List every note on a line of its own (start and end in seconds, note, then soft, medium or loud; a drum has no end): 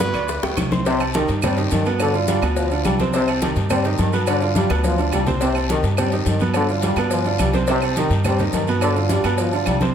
0.00 0.12 B2 medium
0.00 0.12 B3 medium
0.00 0.58 B4 loud
0.00 0.13 B4 medium
0.00 high bongo medium
0.00 high conga medium
0.00 high timbale medium
0.00 short guiro medium
0.00 maracas medium
0.14 0.41 D2 loud
0.14 0.38 D3 medium
0.14 0.38 D4 medium
0.14 0.38 D5 medium
0.14 high bongo soft
0.14 high conga soft
0.14 high timbale medium
0.14 short guiro medium
0.14 claves medium
0.14 maracas soft
0.28 high bongo medium
0.28 high conga soft
0.28 long guiro medium
0.28 maracas medium
0.43 0.56 D2 medium
0.43 0.66 G3 medium
0.43 0.67 G4 medium
0.43 0.67 G5 medium
0.43 high bongo medium
0.43 high conga soft
0.43 high timbale medium
0.43 maracas soft
0.57 1.23 C2 medium
0.57 low bongo medium
0.57 high conga medium
0.57 high timbale medium
0.57 short guiro medium
0.57 claves medium
0.57 maracas medium
0.71 0.84 C4 medium
0.71 0.84 C5 medium
0.71 0.84 C6 medium
0.71 low bongo medium
0.71 high conga medium
0.71 short guiro medium
0.71 maracas soft
0.85 1.01 C3 loud
0.85 1.09 C3 medium
0.85 1.09 C4 medium
0.85 1.10 C5 medium
0.85 cowbell loud
0.85 high conga soft
0.85 low agogo medium
0.85 long guiro medium
0.85 maracas medium
1.00 high conga soft
1.00 low agogo loud
1.00 claves medium
1.00 maracas soft
1.13 1.29 D#3 medium
1.13 1.38 D#3 medium
1.13 1.38 D#4 medium
1.13 1.38 G4 medium
1.13 cowbell medium
1.13 high conga loud
1.13 low agogo medium
1.13 short guiro medium
1.13 maracas medium
1.28 1.68 G2 loud
1.28 cowbell medium
1.28 high conga soft
1.28 short guiro medium
1.28 maracas soft
1.42 1.55 C3 medium
1.42 1.58 G3 medium
1.42 1.55 C4 medium
1.42 1.55 C5 medium
1.42 cowbell loud
1.42 high conga soft
1.42 low conga medium
1.42 low agogo medium
1.42 long guiro medium
1.42 claves medium
1.42 maracas medium
1.57 1.81 D#3 medium
1.57 1.81 D#4 medium
1.57 1.81 G4 medium
1.57 cowbell medium
1.57 high conga soft
1.57 maracas soft
1.71 2.37 G2 medium
1.71 1.86 D#3 medium
1.71 cowbell medium
1.71 high conga medium
1.71 low timbale medium
1.71 low agogo medium
1.71 short guiro medium
1.71 maracas medium
1.85 2.09 B2 medium
1.85 2.10 B3 medium
1.85 2.09 B4 medium
1.85 low agogo medium
1.85 short guiro medium
1.85 maracas soft
2.00 2.15 D3 loud
2.00 cowbell loud
2.00 high conga soft
2.00 low agogo loud
2.00 long guiro medium
2.00 claves medium
2.00 maracas medium
2.14 2.26 D3 medium
2.14 2.26 D4 medium
2.14 2.26 F4 medium
2.14 high conga soft
2.14 maracas soft
2.27 2.40 D3 medium
2.27 2.43 G3 medium
2.27 2.40 D4 medium
2.27 2.40 F4 medium
2.27 cowbell medium
2.27 high conga loud
2.27 low agogo medium
2.27 short guiro medium
2.27 maracas medium
2.42 2.82 D2 loud
2.42 2.66 B2 medium
2.42 2.66 B3 medium
2.42 2.66 B4 medium
2.42 cowbell medium
2.42 high conga soft
2.42 low agogo loud
2.42 short guiro medium
2.42 claves medium
2.42 maracas soft
2.56 2.71 F3 medium
2.56 cowbell loud
2.56 high conga soft
2.56 long guiro medium
2.56 maracas medium
2.71 2.94 D3 medium
2.71 2.95 D4 medium
2.71 2.95 F4 medium
2.71 high conga soft
2.71 low agogo medium
2.71 maracas soft
2.85 3.51 C2 loud
2.85 3.00 G3 medium
2.85 cowbell medium
2.85 high conga medium
2.85 low timbale medium
2.85 low agogo medium
2.85 short guiro medium
2.85 claves medium
2.85 maracas medium
2.99 3.11 C3 medium
2.99 3.11 C4 medium
2.99 3.12 C5 medium
2.99 cowbell medium
2.99 high conga medium
2.99 short guiro medium
2.99 maracas soft
3.13 3.28 C3 loud
3.13 3.37 C3 medium
3.13 3.38 C4 medium
3.13 3.38 C5 medium
3.13 cowbell loud
3.13 high conga soft
3.13 low agogo medium
3.13 long guiro medium
3.13 maracas medium
3.27 high conga soft
3.27 low agogo loud
3.27 claves medium
3.27 maracas soft
3.41 3.56 D#3 medium
3.41 3.65 D#3 medium
3.41 3.65 D#4 medium
3.41 3.66 G4 medium
3.41 cowbell medium
3.41 high conga loud
3.41 low agogo loud
3.41 short guiro medium
3.41 maracas medium
3.56 3.96 G2 loud
3.56 cowbell medium
3.56 high conga soft
3.56 short guiro medium
3.56 maracas soft
3.70 3.82 C3 medium
3.70 3.85 G3 medium
3.70 3.82 C4 medium
3.70 3.82 C5 medium
3.70 cowbell loud
3.70 high conga soft
3.70 low conga medium
3.70 low agogo loud
3.70 long guiro medium
3.70 claves medium
3.70 maracas medium
3.84 4.08 D#3 medium
3.84 4.08 D#4 medium
3.84 4.09 G4 medium
3.84 cowbell medium
3.84 high conga soft
3.84 maracas soft
3.98 4.64 G2 medium
3.98 4.14 D#3 medium
3.98 cowbell medium
3.98 high conga medium
3.98 low agogo medium
3.98 short guiro medium
3.98 maracas medium
4.13 4.36 B2 medium
4.13 4.37 B3 medium
4.13 4.37 B4 medium
4.13 low agogo medium
4.13 short guiro medium
4.13 maracas soft
4.27 4.42 D3 loud
4.27 cowbell loud
4.27 high conga soft
4.27 low agogo loud
4.27 long guiro medium
4.27 claves medium
4.27 maracas medium
4.41 4.53 D3 medium
4.41 4.53 D4 medium
4.41 4.53 F4 medium
4.41 high conga soft
4.41 maracas soft
4.55 4.67 D3 medium
4.55 4.70 G3 medium
4.55 4.67 D4 medium
4.55 4.68 F4 medium
4.55 cowbell medium
4.55 high conga loud
4.55 low agogo medium
4.55 short guiro medium
4.55 maracas medium
4.70 5.10 D2 loud
4.70 4.93 B2 medium
4.70 4.93 B3 medium
4.70 4.94 B4 medium
4.70 cowbell medium
4.70 high conga medium
4.70 low agogo loud
4.70 short guiro medium
4.70 claves medium
4.70 maracas soft
4.84 4.99 F3 medium
4.84 cowbell loud
4.84 high conga medium
4.84 long guiro medium
4.84 maracas medium
4.98 5.22 D3 medium
4.98 5.22 D4 medium
4.98 5.22 F4 medium
4.98 low agogo medium
4.98 maracas soft
5.12 5.78 C2 medium
5.12 5.27 G3 medium
5.12 cowbell medium
5.12 low conga medium
5.12 low agogo loud
5.12 short guiro medium
5.12 claves medium
5.12 maracas medium
5.26 5.38 C3 medium
5.26 5.39 C4 medium
5.26 5.39 C5 medium
5.26 cowbell medium
5.26 low conga loud
5.26 short guiro medium
5.26 maracas soft
5.41 5.56 C3 loud
5.41 5.64 C3 medium
5.41 5.65 C4 medium
5.41 5.65 C5 medium
5.41 cowbell loud
5.41 low agogo medium
5.41 long guiro medium
5.41 maracas medium
5.55 high conga soft
5.55 low agogo loud
5.55 claves medium
5.55 maracas soft
5.69 5.84 D#3 medium
5.69 5.93 D#3 medium
5.69 5.93 D#4 medium
5.69 5.93 G4 medium
5.69 cowbell medium
5.69 high conga loud
5.69 low agogo medium
5.69 short guiro medium
5.69 maracas medium
5.83 6.23 G2 loud
5.83 cowbell medium
5.83 high conga soft
5.83 short guiro medium
5.83 maracas soft
5.97 6.09 C3 medium
5.97 6.13 G3 medium
5.97 6.10 C4 medium
5.97 6.10 C5 medium
5.97 cowbell loud
5.97 high conga soft
5.97 low conga medium
5.97 low agogo loud
5.97 long guiro medium
5.97 claves medium
5.97 maracas medium
6.12 6.36 D#3 medium
6.12 6.36 D#4 medium
6.12 6.36 G4 medium
6.12 cowbell medium
6.12 high conga soft
6.12 maracas soft
6.26 6.92 G2 medium
6.26 6.42 D#3 medium
6.26 cowbell medium
6.26 high conga medium
6.26 low agogo medium
6.26 short guiro medium
6.26 maracas medium
6.39 6.64 B2 medium
6.39 6.64 B3 loud
6.39 6.64 B4 medium
6.39 high conga medium
6.39 low agogo medium
6.39 short guiro medium
6.39 maracas soft
6.54 6.69 D3 loud
6.54 cowbell loud
6.54 high conga soft
6.54 low agogo loud
6.54 long guiro medium
6.54 claves medium
6.54 maracas medium
6.69 6.80 D3 medium
6.69 6.81 D4 medium
6.69 6.81 F4 medium
6.69 high conga soft
6.69 maracas soft
6.82 6.95 D3 medium
6.82 6.98 G3 medium
6.82 6.95 D4 medium
6.82 6.95 F4 medium
6.82 cowbell medium
6.82 high conga medium
6.82 low agogo medium
6.82 short guiro medium
6.82 maracas medium
6.96 7.36 G2 loud
6.96 7.20 B2 medium
6.96 7.21 B3 medium
6.96 7.21 B4 medium
6.96 cowbell medium
6.96 high conga soft
6.96 low agogo loud
6.96 short guiro medium
6.96 claves medium
6.96 maracas soft
7.10 7.26 F3 medium
7.10 cowbell loud
7.10 high conga soft
7.10 long guiro medium
7.10 maracas medium
7.25 7.49 D3 medium
7.25 7.49 D4 medium
7.25 7.49 F4 medium
7.25 high conga soft
7.25 low agogo medium
7.25 maracas soft
7.39 8.05 C2 medium
7.39 7.55 G3 medium
7.39 cowbell medium
7.39 high conga medium
7.39 low timbale medium
7.39 low agogo loud
7.39 short guiro medium
7.39 claves medium
7.39 maracas medium
7.53 7.66 C3 medium
7.53 7.66 C4 medium
7.53 7.66 C5 medium
7.53 cowbell medium
7.53 high conga medium
7.53 short guiro medium
7.53 maracas soft
7.67 7.83 C3 loud
7.67 7.92 C3 medium
7.67 7.92 C4 medium
7.67 7.92 C5 medium
7.67 cowbell loud
7.67 high conga soft
7.67 low agogo medium
7.67 long guiro medium
7.67 maracas medium
7.82 high conga soft
7.82 low agogo loud
7.82 claves medium
7.82 maracas soft
7.97 8.20 D#3 medium
7.97 8.12 D#3 medium
7.97 8.20 D#4 medium
7.97 8.20 G4 medium
7.97 cowbell medium
7.97 high conga medium
7.97 low agogo medium
7.97 short guiro medium
7.97 maracas medium
8.10 8.50 G2 loud
8.10 cowbell medium
8.10 high conga soft
8.10 short guiro medium
8.10 maracas soft
8.24 8.37 C3 medium
8.24 8.40 G3 medium
8.24 8.37 C4 medium
8.24 8.38 C5 medium
8.24 cowbell loud
8.24 high conga soft
8.24 low conga medium
8.24 low agogo medium
8.24 long guiro medium
8.24 claves medium
8.24 maracas medium
8.39 8.63 D#3 medium
8.39 8.63 D#4 medium
8.39 8.63 G4 medium
8.39 cowbell medium
8.39 high conga soft
8.39 low conga medium
8.39 maracas soft
8.53 9.19 G2 loud
8.53 8.68 D#3 medium
8.53 cowbell medium
8.53 high conga medium
8.53 low timbale medium
8.53 low agogo medium
8.53 short guiro medium
8.53 maracas medium
8.67 8.91 B2 medium
8.67 8.91 B3 medium
8.67 8.91 B4 medium
8.67 low agogo medium
8.67 short guiro medium
8.67 maracas soft
8.81 8.96 D3 loud
8.81 cowbell loud
8.81 high conga soft
8.81 low agogo loud
8.81 long guiro medium
8.81 claves medium
8.81 maracas medium
8.96 9.07 D3 medium
8.96 9.08 D4 medium
8.96 9.08 F4 medium
8.96 high conga soft
8.96 maracas soft
9.09 9.22 D3 medium
9.09 9.25 G3 medium
9.09 9.22 D4 medium
9.09 9.22 F4 medium
9.09 cowbell medium
9.09 high conga medium
9.09 low agogo medium
9.09 short guiro medium
9.09 maracas medium
9.24 9.63 G2 medium
9.24 9.48 B2 medium
9.24 9.48 B3 medium
9.24 9.48 B4 medium
9.24 cowbell medium
9.24 high conga soft
9.24 low agogo loud
9.24 short guiro medium
9.24 claves medium
9.24 maracas soft
9.38 9.53 F3 medium
9.38 cowbell loud
9.38 high conga soft
9.38 long guiro medium
9.38 maracas medium
9.52 9.76 D3 medium
9.52 9.76 D4 medium
9.52 9.76 F4 medium
9.52 high conga soft
9.52 low agogo medium
9.52 maracas soft
9.66 9.94 C2 medium
9.66 9.81 G3 medium
9.66 cowbell medium
9.66 high conga medium
9.66 low agogo loud
9.66 short guiro medium
9.66 claves medium
9.66 maracas medium
9.80 9.93 C3 medium
9.80 9.93 C4 medium
9.80 9.93 C5 medium
9.80 cowbell medium
9.80 high conga medium
9.80 short guiro medium
9.80 maracas soft